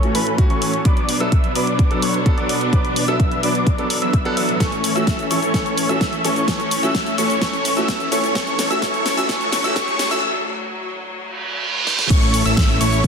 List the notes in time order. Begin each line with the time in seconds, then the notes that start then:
Already playing: A2 E3 A3 C#4 A4 C#5 C#6
0.03 E3 A3 C#4 F#4, closed hi-hat
0.15 E3 A3 C#4 A4 B4 B5, open hi-hat
0.27 closed hi-hat
0.38 E3 A3 C#4 F#4, kick, closed hi-hat
0.50 E3 A3 C#4 A4 C#5 C#6, closed hi-hat
0.62 open hi-hat
0.73 closed hi-hat
0.85 B2 F#3 B3 D4 B4 D5 D6, kick, closed hi-hat
0.97 closed hi-hat
1.09 open hi-hat
1.20 F#3 B3 D4 A4 B4 E5 E6, closed hi-hat
1.32 kick, closed hi-hat
1.44 closed hi-hat
1.55 F#3 B3 D4 B4 D5 D6, open hi-hat
1.67 closed hi-hat
1.79 kick, closed hi-hat
1.90 F#3 B3 D4 A4, closed hi-hat
2.02 F#3 B3 D4 B4 C#5 C#6, open hi-hat
2.14 closed hi-hat
2.25 F#3 B3 D4 A4, kick, closed hi-hat
2.38 F#3 B3 D4 B4 D5 D6, closed hi-hat
2.49 open hi-hat
2.61 closed hi-hat
2.72 E3 F#3 B3 D4 B4 D5 D6, kick, closed hi-hat
2.85 closed hi-hat
2.96 open hi-hat
3.07 F#3 B3 D4 A4 B4 E5 E6, closed hi-hat
3.20 kick, closed hi-hat
3.31 closed hi-hat
3.43 F#3 B3 D4 B4 D5 D6, open hi-hat
3.55 closed hi-hat
3.67 kick, closed hi-hat
3.78 F#3 B3 D4 A4, closed hi-hat
3.90 open hi-hat
4.02 F#3 B3 D4 B4 E5 E6, closed hi-hat
4.13 kick, closed hi-hat
4.25 F#3 B3 D4 A4 B4 F#5 F#6, closed hi-hat
4.37 F#3 B3 D4 B4 E5 E6, open hi-hat
4.49 closed hi-hat
4.60 A2 E3 A3 C#4 A4 C#5 C#6, kick, snare, closed hi-hat, riser, shaker
4.72 closed hi-hat, shaker
4.84 open hi-hat, shaker
4.95 E3 A3 C#4 F#4 A4 E5 E6, closed hi-hat, shaker
5.07 kick, snare, closed hi-hat, shaker
5.19 closed hi-hat, shaker
5.30 E3 A3 C#4 A4 C#5 C#6, open hi-hat, shaker
5.42 closed hi-hat, shaker
5.54 E3 A3 C#4 A4 C#5 C#6, kick, snare, closed hi-hat, shaker
5.66 closed hi-hat, shaker
5.78 open hi-hat, shaker
5.89 E3 A3 C#4 F#4 A4 E5 E6, closed hi-hat, shaker
6.01 kick, snare, closed hi-hat, shaker
6.13 closed hi-hat, shaker
6.24 E3 A3 C#4 A4 C#5 C#6, open hi-hat, shaker
6.36 closed hi-hat, shaker
6.47 E3 A3 C#4 A4 C#5 C#6, kick, snare, closed hi-hat, shaker
6.60 closed hi-hat, shaker
6.71 open hi-hat, shaker
6.82 E3 A3 C#4 F#4 A4 E5 E6, closed hi-hat, shaker
6.95 kick, snare, closed hi-hat, shaker
7.06 closed hi-hat, shaker
7.18 E3 A3 C#4 A4 C#5 C#6, open hi-hat, shaker
7.30 closed hi-hat, shaker
7.41 E3 A3 C#4 A4 C#5 C#6, kick, snare, closed hi-hat, shaker
7.53 closed hi-hat, shaker
7.65 open hi-hat, shaker
7.76 E3 A3 C#4 F#4 A4 E5 E6, closed hi-hat, shaker
7.88 kick, snare, closed hi-hat, shaker
8.00 closed hi-hat, shaker
8.11 E3 A3 C#4 A4 C#5 C#6, open hi-hat, shaker
8.24 closed hi-hat, shaker
8.35 D2 A2 E3 F#3 A3 C#4 A4 C#5 C#6, kick, snare, closed hi-hat, shaker
8.47 closed hi-hat, shaker
8.59 snare, open hi-hat, shaker
8.70 E3 A3 C#4 F#4 A4 E5 E6, closed hi-hat, shaker
8.82 E3 A3 C#4 A4 C#5 C#6, kick, snare, closed hi-hat, shaker
8.94 closed hi-hat, shaker
9.06 snare, open hi-hat, shaker
9.17 E3 A3 C#4 F#4 A4 E5 E6, closed hi-hat, shaker
9.29 E3 A3 C#4 A4 C#5 C#6, kick, snare, closed hi-hat, shaker
9.41 closed hi-hat, shaker
9.52 snare, open hi-hat, shaker
9.64 E3 A3 C#4 F#4 A4 E5 E6, closed hi-hat, shaker
9.75 E3 A3 C#4 A4 C#5 C#6, kick, snare, closed hi-hat, shaker
9.88 closed hi-hat, shaker
9.99 snare, open hi-hat, shaker
10.11 E3 A3 C#4 F#4 A4 E5 E6, closed hi-hat, shaker
11.17 reverse cymbal
11.87 snare
11.99 snare
12.10 A1 E3 A3 C#4 E4 A4 C#5 C#6, kick, closed hi-hat, crash, downlifter, shaker
12.22 closed hi-hat, shaker
12.34 open hi-hat, shaker
12.46 A1 E3 A3 C#4 A4 E5 E6, closed hi-hat, shaker
12.57 kick, snare, closed hi-hat, shaker
12.69 closed hi-hat, shaker
12.81 A1 E3 A3 C#4 A4 C#5 C#6, open hi-hat, shaker
12.92 closed hi-hat, shaker